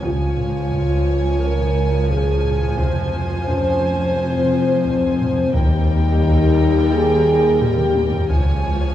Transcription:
0.02 2.74 C#2 medium
0.02 0.23 C#3 medium
0.02 5.50 F3 medium
0.02 1.38 F4 medium
0.02 2.74 C#5 medium
0.02 5.50 G#5 medium
0.02 taiko medium
0.37 0.58 C#3 soft
0.37 taiko low-mid medium
0.71 0.92 C#3 medium
0.71 taiko medium
1.40 1.61 C#3 medium
1.40 2.09 A#4 loud
1.57 taiko low-mid soft
1.76 1.96 C#4 medium
2.09 2.30 C#3 medium
2.09 2.78 G#4 medium
2.09 taiko medium
2.44 2.64 C#3 medium
2.44 taiko low-mid medium
2.61 taiko low-mid soft
2.78 5.50 F1 medium
2.78 5.54 F2 medium
2.78 2.99 F2 medium
2.78 5.50 F2 medium
2.78 5.50 C5 medium
2.78 taiko medium
3.13 3.33 F2 medium
3.13 taiko low-mid medium
3.47 3.68 F2 medium
3.47 4.12 C#4 medium
3.47 taiko medium
3.82 4.03 F2 medium
4.16 4.37 F2 medium
4.16 5.55 C4 medium
4.33 taiko low-mid soft
4.51 4.72 F3 medium
4.85 5.06 F2 medium
4.85 taiko medium
5.19 5.40 F2 medium
5.19 taiko low-mid medium
5.37 taiko low-mid soft
5.54 8.30 D#2 medium
5.54 5.75 D#3 medium
5.54 8.26 G3 medium
5.54 6.89 D#4 loud
5.54 8.26 A#4 medium
5.54 8.26 G5 medium
5.54 taiko medium
5.89 6.10 D#3 medium
6.23 6.44 D#3 medium
6.23 taiko medium
6.58 6.79 D#3 medium
6.92 7.13 D#3 medium
6.92 7.61 G#4 loud
7.27 7.47 D#4 medium
7.60 7.81 D#3 medium
7.60 8.29 G4 medium
7.60 taiko low-mid medium
7.78 taiko mid medium
7.95 8.16 D#3 medium
7.95 taiko high medium
8.12 taiko low medium
8.29 8.95 C#2 medium
8.29 8.50 C#3 medium
8.29 8.95 F3 medium
8.29 8.95 C#5 medium
8.29 8.95 G#5 medium
8.29 taiko medium

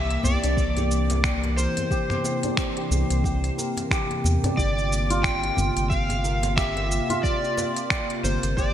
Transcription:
0.00 0.17 C2 loud
0.00 8.74 C3 medium
0.00 4.54 E3 medium
0.00 4.54 A#3 medium
0.00 0.43 D4 medium
0.00 0.77 G4 medium
0.00 1.57 A#4 medium
0.00 0.26 E5 loud
0.00 1.23 G5 medium
0.10 closed hi-hat soft
0.24 0.37 C2 loud
0.24 1.57 D5 medium
0.24 djembe bass medium
0.24 cabasa medium
0.44 1.67 C2 medium
0.44 2.43 D4 medium
0.44 closed hi-hat medium
0.44 cabasa soft
0.57 kick loud
0.57 cabasa soft
0.77 1.90 G4 medium
0.77 closed hi-hat soft
0.77 djembe tone medium
0.77 cabasa soft
0.91 cabasa medium
1.10 closed hi-hat medium
1.10 djembe slap medium
1.10 cabasa soft
1.24 3.24 G5 medium
1.24 finger snap loud
1.24 kick loud
1.24 cabasa soft
1.44 closed hi-hat soft
1.44 djembe slap medium
1.57 3.57 A#4 medium
1.57 3.53 C5 medium
1.57 cabasa medium
1.77 closed hi-hat medium
1.77 djembe tone medium
1.77 cabasa soft
1.91 2.77 G4 loud
1.91 kick loud
1.91 cabasa soft
2.10 finger snap soft
2.10 djembe bass medium
2.10 cabasa soft
2.24 djembe slap medium
2.24 cabasa medium
2.43 4.44 D4 medium
2.43 closed hi-hat soft
2.43 djembe tone medium
2.43 cabasa soft
2.57 finger snap loud
2.57 kick loud
2.57 cabasa soft
2.77 3.91 G4 medium
2.77 closed hi-hat soft
2.91 3.04 C2 medium
2.91 djembe tone medium
2.91 cabasa medium
3.10 3.50 C2 medium
3.10 closed hi-hat medium
3.10 cabasa soft
3.24 5.32 G5 medium
3.24 kick loud
3.24 cabasa soft
3.44 closed hi-hat soft
3.44 cabasa soft
3.58 6.24 A#4 medium
3.58 djembe slap soft
3.58 cabasa medium
3.77 closed hi-hat soft
3.77 djembe slap medium
3.77 cabasa soft
3.91 4.58 G4 medium
3.91 finger snap medium
3.91 kick loud
3.91 cabasa soft
4.10 closed hi-hat soft
4.10 djembe tone soft
4.24 4.37 E2 medium
4.24 djembe slap soft
4.24 djembe tone soft
4.24 cabasa medium
4.44 8.17 D4 medium
4.44 closed hi-hat soft
4.44 djembe slap medium
4.44 djembe tone medium
4.44 djembe bass medium
4.44 cabasa soft
4.57 5.50 G1 medium
4.57 8.74 A#3 medium
4.57 8.74 F4 medium
4.57 5.43 G4 medium
4.57 5.26 D5 medium
4.57 kick loud
4.57 cabasa soft
4.79 cabasa soft
4.92 cabasa medium
5.10 7.09 F4 medium
5.10 closed hi-hat medium
5.10 cabasa soft
5.23 5.92 G5 loud
5.23 finger snap medium
5.23 kick loud
5.23 cabasa soft
5.43 6.57 G4 medium
5.43 closed hi-hat soft
5.57 5.71 G1 loud
5.57 djembe bass medium
5.57 cabasa medium
5.77 7.00 G1 medium
5.77 closed hi-hat soft
5.77 cabasa soft
5.90 6.56 F5 loud
5.90 7.90 G5 medium
5.90 kick loud
5.90 cabasa soft
6.09 closed hi-hat soft
6.09 djembe tone medium
6.09 cabasa soft
6.24 8.23 A#4 medium
6.24 cabasa medium
6.43 closed hi-hat medium
6.43 djembe slap medium
6.43 cabasa soft
6.56 7.42 G4 medium
6.56 7.25 E5 medium
6.56 finger snap loud
6.56 kick loud
6.56 cabasa soft
6.77 closed hi-hat soft
6.77 djembe slap medium
6.91 cabasa medium
7.10 8.74 F4 medium
7.10 closed hi-hat soft
7.10 djembe tone medium
7.10 cabasa soft
7.23 8.24 D5 medium
7.23 kick loud
7.23 cabasa soft
7.42 8.57 G4 medium
7.42 cabasa soft
7.58 djembe slap medium
7.58 cabasa medium
7.76 closed hi-hat medium
7.76 cabasa soft
7.90 8.74 G5 medium
7.90 finger snap medium
7.90 kick medium
7.90 cabasa soft
8.10 closed hi-hat soft
8.24 8.37 G1 loud
8.24 8.74 A#4 medium
8.24 8.58 C5 medium
8.24 djembe tone medium
8.24 cabasa medium
8.43 8.74 G1 medium
8.43 closed hi-hat medium
8.43 cabasa soft
8.57 8.74 G4 loud
8.57 8.74 D5 medium
8.57 kick medium
8.57 cabasa soft

